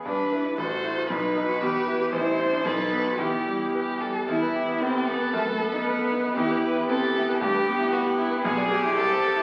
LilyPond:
<<
  \new Staff \with { instrumentName = "Violin" } { \time 2/4 \key e \minor \tempo 4 = 115 b'4 a'4 | b'4 b'4 | c''4 a'4 | g'4 g'8 a'8 |
r4 a'4~ | a'4 b'4 | g'8 b'8 a'4 | g'4 fis'8 e'8 |
\key e \phrygian gis'4 a'4 | }
  \new Staff \with { instrumentName = "Violin" } { \time 2/4 \key e \minor b'4 c''4 | b'2 | c''4 b'4 | g'4. r8 |
e'4 c'8 b8 | a8 b4. | g'2~ | g'2 |
\key e \phrygian gis'4 a'4 | }
  \new Staff \with { instrumentName = "Grand piano" } { \time 2/4 \key e \minor g,8 <e' b'>8 a,,8 <e' c''>8 | b,,8 <dis' b'>8 e,8 <e' b'>8 | a,,8 <e' c''>8 b,,8 <b b'>8 | e,8 g8 b'8 g8 |
e,16 b'16 g'16 b16 b'16 g'16 b16 b'16 | fis,16 b'16 a'16 dis'16 b'16 a'16 dis'16 b'16 | e,16 b'16 g'16 e'16 b'16 g'16 e'16 b'16 | g,16 b'16 g'16 e'16 b'16 g'16 e'16 b'16 |
\key e \phrygian b,,16 d''16 gis'16 e'16 c,16 c''16 a'16 e'16 | }
  \new Staff \with { instrumentName = "Cello" } { \time 2/4 \key e \minor d'8. e'16 fis'8. fis'16 | dis'8. fis'16 g'8. g'16 | e'8. d'16 dis'8. fis'16 | e'4. r8 |
e'4 c'8 b8 | a8 b4. | e'4 c'8 b8 | a8 b4. |
\key e \phrygian b8 g'4. | }
>>